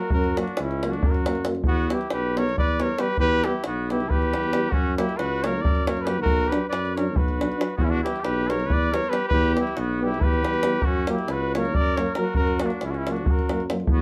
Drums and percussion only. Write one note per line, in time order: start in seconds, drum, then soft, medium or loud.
0.10 davul low loud
0.24 davul high soft
0.37 davul high medium
0.47 davul high soft
0.57 davul high medium
0.71 davul high soft
0.83 davul high medium
0.93 davul high soft
1.03 davul low loud
1.14 davul high soft
1.26 davul high medium
1.35 davul high soft
1.45 davul high medium
1.55 davul high soft
1.64 davul low loud
1.90 davul high medium
2.01 davul high soft
2.10 davul high medium
2.37 davul high medium
2.49 davul high soft
2.58 davul low medium
2.68 davul high soft
2.80 davul high medium
2.89 davul high soft
2.98 davul high medium
3.17 davul low medium
3.44 davul high medium
3.64 davul high medium
3.90 davul high medium
4.00 davul high soft
4.10 davul low medium
4.22 davul high soft
4.33 davul high medium
4.44 davul high soft
4.53 davul high medium
4.72 davul low medium
4.98 davul high medium
5.09 davul high soft
5.19 davul high medium
5.44 davul high medium
5.65 davul low loud
5.75 davul high soft
5.87 davul high medium
5.97 davul high soft
6.07 davul high medium
6.26 davul low loud
6.52 davul high medium
6.73 davul high medium
6.85 davul high soft
6.97 davul high medium
7.16 davul low loud
7.28 davul high soft
7.41 davul high medium
7.52 davul high soft
7.61 davul high medium
7.70 davul high soft
7.78 davul low medium
8.06 davul high medium
8.16 davul high soft
8.25 davul high medium
8.50 davul high medium
8.60 davul high soft
8.70 davul low loud
8.83 davul high soft
8.94 davul high medium
9.04 davul high soft
9.13 davul high medium
9.31 davul low medium
9.57 davul high medium
9.67 davul high soft
9.77 davul high medium
10.14 davul high soft
10.21 davul low loud
10.33 davul high soft
10.45 davul high medium
10.54 davul high soft
10.63 davul high medium
10.82 davul low medium
11.07 davul high medium
11.19 davul high soft
11.28 davul high medium
11.55 davul high medium
11.65 davul high soft
11.74 davul low loud
11.86 davul high soft
11.97 davul high medium
12.06 davul high soft
12.15 davul high medium
12.34 davul low medium
12.47 davul high soft
12.60 davul high medium
12.70 davul high soft
12.81 davul high medium
12.94 davul high soft
13.07 davul high medium
13.16 davul high soft
13.26 davul low loud
13.39 davul high soft
13.49 davul high medium
13.60 davul high soft
13.70 davul high medium
13.80 davul high soft
13.87 davul low loud